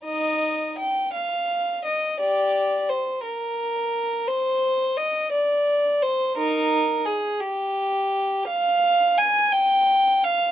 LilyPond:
\new Staff \with { instrumentName = "Violin" } { \time 6/8 \key ees \major \tempo 4. = 57 <ees' ees''>4 g''8 f''4 ees''8 | <g' d''>4 c''8 bes'4. | c''4 ees''8 d''4 c''8 | <ees' bes'>4 aes'8 g'4. |
\key g \phrygian f''4 aes''8 g''4 f''8 | }